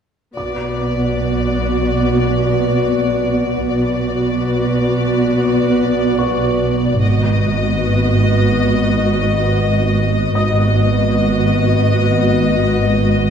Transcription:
0.35 double bass section B1, cello section B2, viola section B3 F#4, violin section D5, felt piano D6
3.68 double bass section B1, cello section B2, viola section B3 F#4, violin section D5
6.19 felt piano B4 C#6
7.01 double bass section G#1, cello section G#2, viola section B3 F#4, violin section D#5
10.35 double bass section G#1, cello section G#2, viola section B3 F#4, felt piano D#5 D#6, violin section D#5

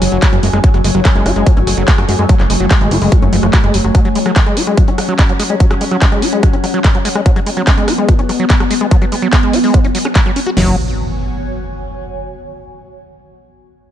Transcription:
Already playing: ambient pad F#3 C#4, analog synth pad F#4 C#5 G#5
0.02 analog synth bass F#1, acid bass F#3, cross-stick, open hi-hat
0.12 analog synth bass F#1, acid bass F#3, closed hi-hat
0.22 acid bass G#3, kick, cross-stick, clap, closed hi-hat
0.33 analog synth bass F#1, acid bass F#3, closed hi-hat
0.43 analog synth bass F#1, acid bass G#3, open hi-hat
0.53 analog synth bass F#1, acid bass G#3, cross-stick, closed hi-hat
0.64 acid bass F#3, ambient pad A3, kick, closed hi-hat
0.74 analog synth bass F#1, acid bass F#3, cross-stick, closed hi-hat
0.84 analog synth bass F#1, acid bass G#3, open hi-hat
0.95 analog synth bass F#1, acid bass F#3, cross-stick, closed hi-hat
1.05 acid bass G#3, kick, clap, closed hi-hat
1.15 analog synth bass F#1, acid bass G#3, closed hi-hat
1.26 analog synth bass F#1, acid bass F#4, cross-stick, open hi-hat
1.36 analog synth bass F#1, acid bass G#3, closed hi-hat
1.47 acid bass F3, kick, cross-stick, closed hi-hat
1.57 analog synth bass G#1, acid bass C#4, closed hi-hat
1.67 analog synth bass F#1, acid bass F#3, cross-stick, open hi-hat
1.77 analog synth bass F#1, acid bass F#3
1.88 acid bass G#3, kick, clap, closed hi-hat
1.98 analog synth bass F#2, acid bass F#3, cross-stick, closed hi-hat
2.09 analog synth bass F#2, acid bass G#3, open hi-hat
2.19 analog synth bass F#2, acid bass G#3, cross-stick, closed hi-hat
2.29 acid bass F#3, kick, closed hi-hat
2.40 analog synth bass F#1, acid bass F#3, cross-stick, clap, closed hi-hat
2.50 analog synth bass F#1, acid bass G#3, open hi-hat
2.60 analog synth bass F#1, acid bass F#3, closed hi-hat
2.71 acid bass G#3, kick, cross-stick, clap, closed hi-hat
2.81 analog synth bass G#1, acid bass G#3, closed hi-hat
2.91 analog synth bass F#1, acid bass F#4, open hi-hat
3.02 analog synth bass F#1, acid bass G#3, open hi-hat
3.12 acid bass F3, kick, cross-stick, closed hi-hat
3.22 analog synth bass F#1, acid bass C#4, closed hi-hat
3.33 analog synth bass F#1, acid bass F3, open hi-hat
3.43 analog synth bass F#1, acid bass F3, cross-stick, closed hi-hat
3.53 acid bass F#4, kick, clap, closed hi-hat
3.64 analog synth bass F#1, acid bass G#3, cross-stick, closed hi-hat
3.74 analog synth bass F#1, acid bass F#3, open hi-hat
3.84 analog synth bass F#1, acid bass F#3, cross-stick
3.95 acid bass F#3, ambient pad C#4, kick, cross-stick, closed hi-hat
4.05 acid bass F#3, closed hi-hat
4.15 acid bass G#3, analog synth pad F#5, open hi-hat
4.26 acid bass F#3, cross-stick, closed hi-hat
4.36 acid bass G#3, kick, clap, closed hi-hat
4.46 acid bass G#3, cross-stick, closed hi-hat
4.57 acid bass F#4, open hi-hat
4.67 acid bass G#3, cross-stick, closed hi-hat
4.77 acid bass F3, kick, closed hi-hat
4.88 acid bass C#4, closed hi-hat
4.98 acid bass F#3, cross-stick, open hi-hat
5.09 acid bass F#3, closed hi-hat
5.19 acid bass G#3, kick, cross-stick, clap, closed hi-hat
5.29 acid bass F#3, closed hi-hat
5.40 acid bass G#3, cross-stick, open hi-hat
5.50 acid bass G#3, closed hi-hat
5.60 acid bass F#3, kick, closed hi-hat
5.71 acid bass F#3, cross-stick, closed hi-hat
5.81 acid bass G#3, open hi-hat
5.91 acid bass F#3, cross-stick, closed hi-hat
6.02 acid bass G#3, kick, clap, closed hi-hat
6.12 acid bass G#3, cross-stick, closed hi-hat
6.22 acid bass F#4, open hi-hat
6.33 acid bass G#3, closed hi-hat
6.43 acid bass F3, kick, cross-stick, closed hi-hat
6.53 acid bass C#4, closed hi-hat
6.64 acid bass F#3, cross-stick, open hi-hat
6.74 acid bass F#3, closed hi-hat
6.84 acid bass G#3, kick, cross-stick, clap, closed hi-hat
6.95 acid bass F#3, closed hi-hat
7.05 acid bass G#3, open hi-hat
7.15 acid bass G#3, cross-stick, closed hi-hat
7.26 acid bass F#3, ambient pad B3, kick, closed hi-hat
7.36 acid bass F#3, cross-stick, closed hi-hat
7.46 acid bass G#3, open hi-hat
7.57 acid bass F#3, cross-stick, closed hi-hat
7.67 acid bass G#3, kick, clap, closed hi-hat
7.77 acid bass G#3, closed hi-hat
7.88 acid bass F#4, cross-stick, open hi-hat
7.98 acid bass G#3, closed hi-hat
8.09 acid bass F3, kick, cross-stick, closed hi-hat
8.19 acid bass C#4, closed hi-hat
8.29 acid bass F#3, cross-stick, open hi-hat
8.40 acid bass F#3
8.50 acid bass G#3, kick, clap, closed hi-hat
8.60 acid bass F#3, cross-stick, closed hi-hat
8.71 acid bass G#3, open hi-hat
8.81 acid bass G#3, cross-stick
8.91 acid bass F#3, kick, closed hi-hat
9.02 acid bass F#3, cross-stick, closed hi-hat
9.12 acid bass G#3, open hi-hat
9.22 acid bass F#3, closed hi-hat
9.33 acid bass G#3, kick, cross-stick, clap, closed hi-hat
9.43 acid bass G#3, closed hi-hat
9.53 acid bass F#4, open hi-hat
9.64 acid bass G#3, open hi-hat
9.74 acid bass F3, kick, cross-stick, closed hi-hat
9.84 acid bass C#4, closed hi-hat
9.95 acid bass F#3, open hi-hat
10.05 acid bass C#4, cross-stick, closed hi-hat
10.15 acid bass F#3, kick, clap, closed hi-hat
10.26 acid bass F#3, cross-stick, closed hi-hat
10.36 acid bass C#4, open hi-hat
10.47 acid bass F#4, cross-stick, closed hi-hat
10.57 analog synth bass F#1, acid bass F#3, analog synth pad F#4, snare, crash, impact
10.63 analog synth pad C#5
10.69 analog synth pad G#5

